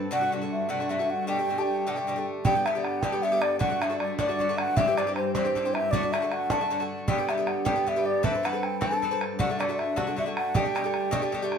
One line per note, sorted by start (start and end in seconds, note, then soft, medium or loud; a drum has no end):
0.00 2.44 G2 medium
0.00 0.11 C4 soft
0.00 0.11 A4 soft
0.00 0.11 B4 soft
0.11 0.21 C3 medium
0.11 0.22 D3 medium
0.11 0.21 A3 medium
0.11 0.20 F#4 medium
0.11 0.31 F#5 loud
0.21 0.31 D3 soft
0.21 0.32 A3 soft
0.21 0.32 F#4 soft
0.32 0.41 C3 soft
0.32 0.42 D3 medium
0.32 0.42 A3 soft
0.32 0.40 F#4 medium
0.42 0.68 D3 soft
0.42 0.69 A3 soft
0.42 0.69 F#4 soft
0.52 0.71 E5 medium
0.69 0.80 C3 medium
0.69 0.80 D3 medium
0.69 0.80 A3 medium
0.69 0.79 F#4 medium
0.69 0.92 F#5 medium
0.80 0.89 D3 soft
0.80 0.89 A3 soft
0.80 0.90 F#4 soft
0.89 0.99 C3 medium
0.89 1.00 D3 soft
0.89 0.99 A3 medium
0.89 0.98 F#4 soft
0.89 1.11 E5 medium
0.99 1.27 D3 soft
0.99 1.27 A3 soft
0.99 1.27 F#4 soft
1.10 1.28 F#5 medium
1.27 1.38 B2 medium
1.27 1.38 D3 medium
1.27 1.38 A3 medium
1.27 1.37 G4 medium
1.27 1.60 G5 loud
1.39 1.49 D3 soft
1.39 1.49 A3 soft
1.39 1.49 G4 soft
1.49 1.58 B2 soft
1.49 1.59 D3 soft
1.49 1.58 A3 medium
1.49 1.57 G4 soft
1.58 1.86 D3 soft
1.58 1.86 A3 soft
1.58 1.86 G4 medium
1.58 1.64 A5 medium
1.63 1.91 G5 medium
1.87 1.97 B2 medium
1.87 1.97 D3 medium
1.87 1.96 A3 medium
1.87 1.95 G4 medium
1.87 1.95 F#5 soft
1.94 2.07 A3 soft
1.94 2.06 G4 soft
1.94 2.26 G5 medium
1.98 2.07 D3 soft
2.07 2.16 B2 soft
2.07 2.17 D3 medium
2.07 2.16 A3 medium
2.07 2.15 G4 medium
2.16 2.44 D3 soft
2.16 2.45 A3 soft
2.16 2.44 G4 medium
2.45 2.55 G2 medium
2.45 7.07 G2 medium
2.45 2.55 D3 medium
2.45 2.55 B3 medium
2.45 2.54 G4 medium
2.45 2.67 G5 loud
2.45 bodhran medium
2.55 2.65 D3 soft
2.55 2.66 B3 soft
2.55 2.65 G4 soft
2.65 2.75 G2 soft
2.65 2.75 D3 soft
2.65 2.75 B3 medium
2.65 2.74 G4 medium
2.65 2.85 E5 medium
2.65 bodhran medium
2.75 3.02 D3 soft
2.75 3.03 B3 soft
2.75 3.03 G4 soft
2.84 3.03 F#5 medium
2.84 bodhran soft
3.01 3.13 G2 medium
3.01 3.13 D3 medium
3.01 3.12 B3 medium
3.01 3.11 G4 medium
3.01 3.24 G5 medium
3.01 bodhran medium
3.12 3.22 D3 soft
3.12 3.23 B3 soft
3.12 3.23 G4 medium
3.22 3.32 G2 soft
3.22 3.33 D3 soft
3.22 3.32 B3 medium
3.22 3.31 G4 soft
3.22 3.43 E5 medium
3.32 3.59 D3 soft
3.32 3.60 B3 soft
3.32 3.60 G4 medium
3.42 3.60 D5 medium
3.42 bodhran medium
3.59 3.70 A2 medium
3.59 3.71 D3 medium
3.59 3.70 A3 medium
3.59 3.68 F#4 medium
3.59 3.83 F#5 medium
3.59 bodhran medium
3.70 3.81 D3 soft
3.70 3.81 A3 soft
3.70 3.81 F#4 soft
3.81 3.90 A2 soft
3.81 3.91 D3 soft
3.81 3.90 A3 soft
3.81 3.89 F#4 soft
3.81 3.99 E5 medium
3.81 bodhran medium
3.90 4.18 D3 soft
3.90 4.18 A3 soft
3.90 4.18 F#4 medium
4.00 4.17 D5 medium
4.00 bodhran soft
4.19 4.29 A2 medium
4.19 4.29 D3 medium
4.19 4.29 A3 medium
4.19 4.27 F#4 medium
4.19 4.59 D5 medium
4.19 bodhran medium
4.29 4.39 D3 soft
4.29 4.40 A3 soft
4.29 4.39 F#4 soft
4.39 4.48 A2 soft
4.39 4.49 D3 medium
4.39 4.48 A3 medium
4.39 4.48 F#4 medium
4.39 bodhran soft
4.49 4.77 D3 soft
4.49 4.77 A3 soft
4.49 4.77 F#4 medium
4.58 4.79 F#5 loud
4.58 bodhran medium
4.77 4.87 G2 medium
4.77 4.87 E3 medium
4.77 4.87 C4 medium
4.77 4.86 G4 medium
4.77 4.99 E5 loud
4.77 bodhran medium
4.88 4.97 E3 soft
4.88 4.97 C4 soft
4.88 4.98 G4 soft
4.97 5.07 G2 soft
4.97 5.07 E3 medium
4.97 5.07 C4 medium
4.97 5.06 G4 soft
4.97 5.16 D5 medium
4.97 bodhran medium
5.07 5.34 E3 soft
5.07 5.35 C4 soft
5.07 5.35 G4 medium
5.16 5.33 C5 medium
5.16 bodhran medium
5.34 5.45 G2 medium
5.34 5.45 E3 medium
5.34 5.45 C4 medium
5.34 5.43 G4 medium
5.34 5.75 C5 medium
5.34 bodhran medium
5.45 5.55 E3 soft
5.45 5.56 C4 medium
5.45 5.55 G4 medium
5.55 5.64 G2 soft
5.55 5.65 E3 medium
5.55 5.65 C4 medium
5.55 5.64 G4 medium
5.55 bodhran soft
5.65 5.93 E3 soft
5.65 5.93 C4 medium
5.65 5.93 G4 medium
5.74 5.93 E5 medium
5.74 bodhran medium
5.91 6.03 A2 medium
5.91 6.03 D3 medium
5.91 6.03 A3 medium
5.91 6.02 F#4 medium
5.91 6.14 D5 medium
5.91 bodhran medium
6.03 6.13 D3 soft
6.03 6.13 A3 soft
6.03 6.13 F#4 soft
6.12 6.22 A2 medium
6.12 6.23 D3 medium
6.12 6.22 A3 medium
6.12 6.21 F#4 soft
6.12 6.34 E5 medium
6.12 bodhran medium
6.22 6.49 D3 soft
6.22 6.50 A3 soft
6.22 6.50 F#4 soft
6.32 6.52 F#5 loud
6.32 bodhran medium
6.50 6.60 A2 medium
6.50 6.61 D3 medium
6.50 6.61 A3 medium
6.50 6.60 F#4 medium
6.50 6.83 A5 medium
6.50 bodhran medium
6.61 6.70 D3 soft
6.61 6.70 A3 soft
6.61 6.71 F#4 soft
6.70 6.80 A2 medium
6.70 6.80 D3 medium
6.70 6.80 A3 medium
6.70 6.79 F#4 medium
6.80 7.07 D3 soft
6.80 7.08 A3 soft
6.80 7.08 F#4 soft
7.08 7.18 G2 medium
7.08 11.58 G2 medium
7.08 7.18 D3 medium
7.08 7.18 B3 medium
7.08 7.17 G4 medium
7.08 7.31 G5 loud
7.08 bodhran medium
7.18 7.28 D3 soft
7.18 7.28 B3 soft
7.18 7.29 G4 soft
7.29 7.38 G2 soft
7.29 7.38 D3 soft
7.29 7.38 B3 soft
7.29 7.36 G4 medium
7.29 7.49 E5 medium
7.29 bodhran medium
7.38 7.64 D3 soft
7.38 7.65 B3 soft
7.38 7.65 G4 soft
7.47 7.67 F#5 medium
7.47 bodhran medium
7.65 7.76 G2 medium
7.65 7.76 D3 medium
7.65 7.76 B3 medium
7.65 7.74 G4 medium
7.65 7.90 G5 medium
7.65 bodhran medium
7.76 7.86 D3 soft
7.76 7.86 B3 soft
7.76 7.86 G4 soft
7.87 7.96 G2 soft
7.87 7.96 D3 medium
7.87 7.96 B3 medium
7.87 7.95 G4 soft
7.87 8.07 E5 medium
7.87 bodhran soft
7.96 8.23 D3 soft
7.96 8.24 B3 soft
7.96 8.24 G4 medium
8.06 8.26 D5 medium
8.23 8.34 E3 medium
8.23 8.34 C4 medium
8.23 8.33 A4 medium
8.23 8.32 B4 medium
8.23 8.47 E5 loud
8.23 bodhran medium
8.33 8.43 C4 soft
8.33 8.44 A4 soft
8.33 8.44 B4 soft
8.43 8.53 E3 soft
8.43 8.54 C4 soft
8.43 8.53 A4 medium
8.43 8.52 B4 medium
8.43 8.65 F#5 medium
8.43 bodhran medium
8.53 8.80 C4 soft
8.53 8.80 A4 soft
8.53 8.81 B4 medium
8.63 8.83 G5 medium
8.63 bodhran soft
8.81 8.92 E3 medium
8.81 8.92 C4 medium
8.81 8.91 A4 medium
8.81 8.90 B4 medium
8.81 9.21 A5 medium
8.81 bodhran medium
8.91 9.02 C4 soft
8.91 9.02 A4 soft
8.91 9.02 B4 soft
9.02 9.12 E3 soft
9.02 9.12 C4 medium
9.02 9.11 A4 medium
9.02 9.10 B4 soft
9.02 bodhran soft
9.11 9.39 C4 soft
9.11 9.40 A4 soft
9.11 9.39 B4 soft
9.21 bodhran medium
9.39 9.49 C3 medium
9.39 9.50 D3 medium
9.39 9.49 A3 medium
9.39 9.48 F#4 medium
9.39 9.62 F#5 loud
9.39 bodhran medium
9.49 9.59 D3 soft
9.49 9.59 A3 soft
9.49 9.60 F#4 soft
9.59 9.69 C3 soft
9.59 9.69 D3 medium
9.59 9.68 A3 medium
9.59 9.67 F#4 soft
9.59 9.80 D5 medium
9.59 bodhran medium
9.69 9.96 D3 soft
9.69 9.96 A3 soft
9.69 9.96 F#4 medium
9.79 9.99 E5 medium
9.79 bodhran medium
9.96 10.07 C3 medium
9.96 10.07 D3 medium
9.96 10.06 A3 medium
9.96 10.05 F#4 medium
9.96 10.18 F#5 medium
9.96 bodhran medium
10.07 10.16 D3 soft
10.07 10.17 A3 soft
10.07 10.17 F#4 soft
10.17 10.26 C3 soft
10.17 10.27 D3 medium
10.17 10.26 A3 medium
10.17 10.25 F#4 medium
10.17 10.25 E5 medium
10.17 bodhran soft
10.26 10.54 D3 soft
10.26 10.54 A3 soft
10.26 10.54 F#4 soft
10.37 10.58 F#5 medium
10.37 bodhran medium
10.54 10.65 B2 medium
10.54 10.65 D3 medium
10.54 10.65 A3 medium
10.54 10.63 G4 medium
10.54 11.40 G5 medium
10.54 bodhran medium
10.65 10.75 D3 soft
10.65 10.75 A3 soft
10.65 10.75 G4 soft
10.75 10.84 B2 soft
10.75 10.85 D3 soft
10.75 10.84 A3 medium
10.75 10.83 G4 medium
10.75 bodhran medium
10.84 11.11 D3 soft
10.84 11.11 A3 soft
10.84 11.12 G4 soft
10.94 bodhran medium
11.11 11.22 B2 medium
11.11 11.22 D3 medium
11.11 11.22 A3 medium
11.11 11.21 G4 medium
11.11 bodhran medium
11.22 11.32 D3 soft
11.22 11.33 A3 soft
11.22 11.33 G4 medium
11.32 11.42 B2 medium
11.32 11.42 D3 medium
11.32 11.42 A3 medium
11.32 11.41 G4 medium
11.32 bodhran soft
11.42 11.58 D3 soft
11.42 11.58 A3 medium
11.42 11.58 G4 medium
11.52 bodhran medium